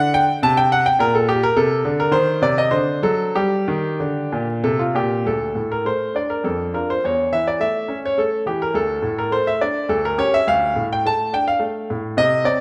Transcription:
Already playing: D3 F#5
0.14 G5
0.43 C3 A5
0.57 G5
0.72 F#5
0.86 G5
0.99 A#2 A#4
1.15 A4
1.29 G4
1.43 A#4
1.57 C3 A4
1.85 D3
2.00 A#4
2.11 D#3 C5
2.42 C3 D5
2.58 D#5
2.71 D3 C5
3.03 F#3 A4
3.35 G3 G4
3.68 D#3
4.00 D3
4.32 A#2
4.64 C3 A4
4.79 F4
4.95 A#2 G4
5.26 D2 A4
5.55 A2
5.72 A#4
5.85 A3 C5
6.14 D4 D5
6.30 A#4
6.44 F2 A4
6.74 D4 F4 A#4
6.90 C5
7.04 E2 C#5
7.32 E3 E5
7.47 D5
7.60 A3 E5
7.88 C#4
8.06 C#5
8.18 A3 A4
8.46 E3 G4
8.62 A#4
8.74 D2 A4
9.02 A2
9.19 A#4
9.32 A3 C5
9.47 E5
9.61 D4 D5
9.89 D2 A4
10.05 A#4
10.18 C#4 G4 C#5
10.34 E5
10.47 D2 F5
10.76 A2
10.93 G5
11.06 A3 A5
11.33 D4 G5
11.48 F5
11.60 A3
11.90 A2
12.17 C3 D#5
12.44 C4 D5

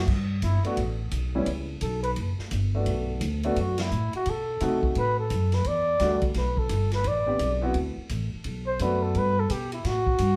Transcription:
0.07 G2, kick, crash
0.42 G1 E4, kick, hi-hat pedal, ride
0.63 A3 B3 D4 F#4, muted upright bass stroke, ride
0.77 A1, kick, ride
1.11 B1, kick, hi-hat pedal, ride
1.35 G3 B3 C#4 E4
1.46 C#2, kick, ride
1.81 B1 A4, kick, hi-hat pedal, ride
2.03 B4, ride
2.16 F#1, kick, ride
2.39 muted upright bass stroke, snare
2.51 G1, kick, hi-hat pedal, ride
2.75 A3 B3 D4 F#4
2.86 B1, kick, ride
3.21 D2, kick, hi-hat pedal, ride
3.43 A3 B3 D4 F#4, ride
3.56 F#2 F#4, kick, ride
3.78 E4, snare, ride
3.91 A2, hi-hat pedal
4.13 F#4, muted upright bass stroke, ride
4.26 B2, kick, ride
4.30 A4
4.60 C3 A3 C4 D#4 F#4, kick, hi-hat pedal, ride
4.83 kick
4.95 A2 B4, kick, ride
5.20 A4
5.30 F#2, kick, hi-hat pedal, ride
5.52 B4, snare, ride
5.64 E2 D5, kick, ride
5.99 D2 G3 A3 D4 F#4, kick, snare, hi-hat pedal, ride
6.21 kick, ride
6.34 B1 B4, kick, snare, ride
6.57 A4, kick
6.69 G1, kick, hi-hat pedal, ride
6.91 B4, snare, ride
7.04 A1 D5, kick, ride
7.26 B3 C4 D4 G4
7.39 B1, kick, hi-hat pedal, ride
7.61 B3 C4 E4 F#4
7.74 D2, kick, ride
7.97 muted upright bass stroke
8.09 A1, kick, hi-hat pedal, ride
8.33 muted upright bass stroke
8.44 B1, kick, ride
8.67 C5
8.79 F#2 A3 B3 D4 F#4 B4, kick, hi-hat pedal, ride
9.03 A4
9.15 G2 B4, kick, ride
9.39 A4
9.50 B2 G4, kick, hi-hat pedal, ride
9.72 E4, ride
9.84 A2 F#4, kick, snare, ride
10.07 kick
10.18 G2, kick, hi-hat pedal, ride

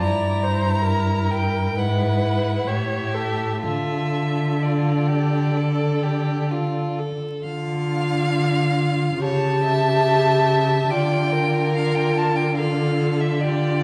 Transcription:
0.00 G2 E4 D5 A#5
0.43 C5
0.86 A#4
1.31 G5
1.75 G#2 E4 B4 F#5
2.67 A2 G4 C#5 E5
3.15 A4
3.63 D3 F4 A4 E5
4.60 F4 D5
5.07 G4
5.57 A4
6.03 G4
6.51 F4
6.99 A4
7.45 D3 F4 F5
9.20 C#3 G4 C#5 A5
9.64 E5
10.90 D3 F4 D5 G5
11.32 A#4
11.75 F4 F5
11.95 G5
12.18 A5
12.36 G5
12.57 F4 A4 F5
13.21 E5
13.40 F4 G4 D5

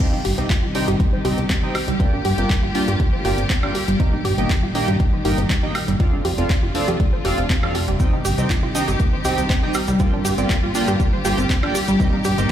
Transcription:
0.00 C3 D#3 G3 C4 D#4 G4 D#5 G5, kick, closed hi-hat, crash
0.13 C2 D#4
0.25 G1 G4, open hi-hat
0.38 C2 C4 D#4 G4 D#5 G5, closed hi-hat
0.50 F4, kick, clap, closed hi-hat
0.63 C2 F4
0.75 C4 D4 D#4 G4 D#5 G5, open hi-hat
0.88 G1 G4, closed hi-hat
1.00 A#3, kick, closed hi-hat
1.13 C5
1.25 C2 C4 D#4 G4 D#5 G5, open hi-hat
1.38 C2 C4, closed hi-hat
1.50 C4, kick, clap, closed hi-hat
1.63 C2 C4 D#4 G4 D#5 G5
1.75 G4, open hi-hat, high woodblock
1.88 C2 G3, closed hi-hat
2.00 D3 G3 A#3 C4 F4 G4 D5 G5, kick, closed hi-hat
2.13 G1 D4
2.25 G2 G4, open hi-hat
2.38 G1 A#3 C4 F4 G4 D5 G5, closed hi-hat
2.50 F4, kick, clap, closed hi-hat
2.63 G1 F4
2.75 A#3 D4 F4 G4 D5 G5, open hi-hat
2.88 G2 G4, closed hi-hat
3.00 A#3, kick, closed hi-hat
3.13 C5
3.25 G1 A#3 F4 G4 D5 G5, open hi-hat
3.38 G1 C4, closed hi-hat
3.50 C4, kick, clap, closed hi-hat
3.63 G1 A#3 D4 F4 G4 D5 G5, high woodblock
3.75 G4, open hi-hat
3.88 G1 G3, closed hi-hat
4.00 A#2 D#3 A#3 C4 D#4 G4 D#5 G5, kick, closed hi-hat
4.13 G1 D#4
4.25 G2 G4, open hi-hat
4.38 G1 A#3 C4 D#4 G4 D#5 G5, closed hi-hat
4.50 F4, kick, clap, closed hi-hat
4.63 G1 F4
4.75 A#3 D4 D#4 G4 D#5 G5, open hi-hat
4.88 G2 G4, closed hi-hat
5.00 A#3, kick, closed hi-hat
5.13 C5
5.25 G1 A#3 D#4 G4 D#5 G5, open hi-hat
5.38 G1 C4, closed hi-hat
5.50 C4, kick, clap, closed hi-hat
5.63 G1 A#3 D#4 G4 D#5 G5
5.75 G4, open hi-hat, high woodblock
5.88 G1 G3, closed hi-hat
6.00 C3 F3 A3 C4 D4 F4 A4 D5 F5, kick, closed hi-hat
6.13 F1 D4
6.25 F2 G4, open hi-hat
6.38 F1 C4 F4 A4 D5 F5, closed hi-hat
6.50 F4, kick, clap, closed hi-hat
6.63 F1 F4
6.75 C4 D4 F4 A4 D5 F5, open hi-hat
6.88 F2 G4, closed hi-hat
7.00 A3, kick, closed hi-hat
7.13 C5
7.25 F1 C4 F4 G4 A4 D5 F5, open hi-hat
7.38 F1 C4, closed hi-hat
7.50 C4, kick, clap, closed hi-hat
7.63 F2 C4 D4 F4 A4 D5 F5, high woodblock
7.75 G4, open hi-hat
7.88 F1 G3, closed hi-hat
8.00 D#3 G3 C4 D#4 G4 D#5 G5, kick, closed hi-hat, shaker
8.13 C2 D#4
8.25 G1 G4, open hi-hat, shaker
8.38 C2 C4 D#4 G4 D#5 G5, closed hi-hat, shaker
8.50 F4, kick, clap, closed hi-hat, shaker
8.63 C2 F4
8.75 C4 D4 D#4 G4 D#5 G5, open hi-hat, shaker
8.88 G1 G4, closed hi-hat, shaker
9.00 A#3, kick, closed hi-hat, shaker
9.13 C5
9.25 C2 C4 D#4 G4 D#5 G5, open hi-hat, shaker
9.38 C2 C4, closed hi-hat, shaker
9.50 C4, kick, clap, closed hi-hat, shaker
9.63 C2 C4 D#4 G4 D#5 G5
9.74 G4, open hi-hat, high woodblock, shaker
9.88 C2 G3, closed hi-hat, shaker
9.99 D3 A#3 C4 F4 G4 D5 G5, kick, closed hi-hat, shaker
10.13 G1 D4
10.25 G2 G4, open hi-hat, shaker
10.38 G1 A#3 C4 F4 G4 D5 G5, closed hi-hat, shaker
10.50 F4, kick, clap, closed hi-hat, shaker
10.63 G1 F4
10.75 A#3 D4 F4 G4 D5 G5, open hi-hat, shaker
10.87 G2 G4, closed hi-hat, shaker
11.00 A#3, kick, closed hi-hat, shaker
11.13 C5
11.25 G1 A#3 F4 G4 D5 G5, open hi-hat, shaker
11.38 G1 C4, closed hi-hat, shaker
11.50 C4, kick, clap, closed hi-hat, shaker
11.63 G1 A#3 D4 F4 G4 D5 G5, high woodblock
11.75 G4, open hi-hat, shaker
11.88 G1 G3, closed hi-hat, shaker
12.00 A#2 D#3 A#3 C4 D#4 G4 D#5 G5, kick, closed hi-hat, shaker
12.13 G1 D#4
12.24 G2 G4, open hi-hat, shaker
12.38 G1 A#3 C4 D#4 G4 D#5 G5, closed hi-hat, shaker

